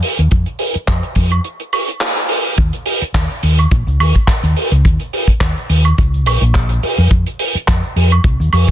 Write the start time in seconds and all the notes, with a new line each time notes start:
0.03 open hi-hat
0.19 D#2, closed hi-hat
0.31 F2, kick, closed hi-hat
0.46 closed hi-hat
0.59 open hi-hat
0.74 muted fingered electric bass stroke, closed hi-hat
0.88 F2, kick, clap, closed hi-hat
1.03 closed hi-hat
1.15 F2, kick, open hi-hat
1.31 closed hi-hat, high woodblock
1.44 closed hi-hat
1.60 closed hi-hat
1.73 open hi-hat, high woodblock
1.89 closed hi-hat
2.01 clap, closed hi-hat
2.17 closed hi-hat
2.29 open hi-hat
2.45 open hi-hat
2.57 D#2, kick, closed hi-hat, shaker
2.73 closed hi-hat, shaker
2.86 open hi-hat, shaker
3.01 muted fingered electric bass stroke, closed hi-hat, shaker
3.14 D#2, kick, clap, closed hi-hat, shaker
3.31 shaker
3.43 D#2, open hi-hat, shaker
3.58 closed hi-hat, high woodblock, shaker
3.71 A#1, kick, closed hi-hat, shaker
3.87 C#2, shaker
4.00 D#2, open hi-hat, high woodblock, shaker
4.15 kick, closed hi-hat, shaker
4.27 kick, clap, closed hi-hat, shaker
4.43 D#2, closed hi-hat, shaker
4.57 open hi-hat, shaker
4.72 C#2, closed hi-hat, shaker
4.85 D#2, kick, closed hi-hat, shaker
5.00 closed hi-hat, shaker
5.13 open hi-hat, shaker
5.28 muted fingered electric bass stroke, kick, closed hi-hat, shaker
5.41 D#2, kick, clap, closed hi-hat, shaker
5.57 shaker
5.69 D#2, open hi-hat, shaker
5.85 closed hi-hat, high woodblock, shaker
5.98 C#2, kick, closed hi-hat, shaker
6.14 shaker
6.26 A#1, open hi-hat, high woodblock, shaker
6.41 A#1, closed hi-hat, shaker
6.55 kick, clap, closed hi-hat, shaker
6.69 closed hi-hat, shaker
6.83 muted fingered electric bass stroke, open hi-hat, shaker
6.97 F2, open hi-hat, shaker
7.11 F2, kick, closed hi-hat, shaker
7.26 closed hi-hat, shaker
7.39 open hi-hat, shaker
7.55 muted fingered electric bass stroke, closed hi-hat, shaker
7.68 F2, kick, clap, closed hi-hat
7.84 shaker
7.96 F2, open hi-hat, shaker
8.11 closed hi-hat, high woodblock, shaker
8.24 C2, kick, closed hi-hat, shaker
8.40 D#2, shaker
8.53 F2, open hi-hat, high woodblock, shaker
8.67 closed hi-hat